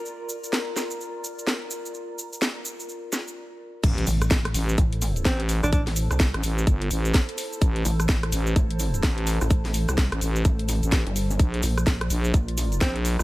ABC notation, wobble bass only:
X:1
M:4/4
L:1/16
Q:"Swing 16ths" 1/4=127
K:Aphr
V:1 name="Wobble bass" clef=bass
z16 | z16 | z2 A,,,2 A,,,2 z2 A,,,4 z3 A,,,- | A,,,3 C,,2 z8 z3 |
z2 A,,,2 A,,,2 z2 A,,,4 z3 A,,,- | A,,,3 C,,2 z3 A,,,3 z2 G,,,3 | z2 B,,,2 B,,,2 z2 B,,,4 z3 B,,, |]